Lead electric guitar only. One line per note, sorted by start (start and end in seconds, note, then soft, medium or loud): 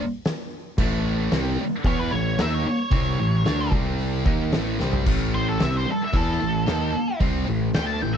1.87 1.99 C#5 loud
1.99 2.11 B4 medium
2.11 2.38 C#5 loud
2.42 2.54 E5 loud
2.54 2.66 C#5 medium
2.67 3.71 C#5 loud
5.35 5.47 C5 medium
5.49 5.61 A4 medium
5.62 5.74 E5 medium
5.77 5.89 C5 medium
5.91 6.02 A4 medium
6.04 6.16 E5 medium
6.17 7.20 A4 loud
7.75 7.86 G5 loud
7.87 8.02 A5 medium
8.02 8.15 G5 medium
8.14 8.17 E5 medium